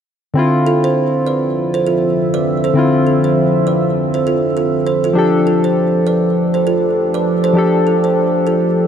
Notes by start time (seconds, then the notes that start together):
0.34 D3 F3 C4 E4 E5
0.39 F4
0.66 F4 A4
0.84 A4 C5
1.27 B4 D5
1.74 A4 C5
1.87 F4 A4
2.34 B4 D5
2.64 A4 C5
2.74 D3 C4 E4
2.78 F4
3.07 F4 A4
3.24 A4 C5
3.67 B4 D5
4.14 A4 C5
4.27 F4 A4
4.57 F4 A4
4.87 A4 C5
5.04 F4 A4
5.13 F3 D4 G4 A4
5.18 A4
5.47 F4 A4
5.64 A4 C5
6.07 B4 D5
6.54 A4 C5
6.67 F4 A4
7.14 B4 D5
7.44 A4 C5
7.53 F3 D4 G4
7.58 A4
7.87 F4 A4
8.04 A4 C5
8.47 F4 A4